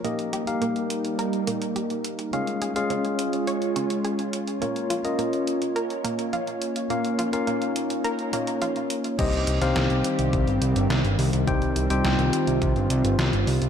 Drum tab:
CC |----------------|----------------|----------------|----------------|
HH |xxxxxxxxxxxxxxxx|xxxxxxxxxxxxxxxx|xxxxxxxxxxxxxxxx|xxxxxxxxxxxxxxxx|
SD |----------------|----------------|----------------|----------------|
BD |----------------|----------------|----------------|----------------|

CC |x---------------|----------------|
HH |xxxxxxxxxxxxxxox|xxxxxxxxxxxxxxox|
SD |---oo-------o---|----o-------o---|
BD |o-------o-------|o-------o-------|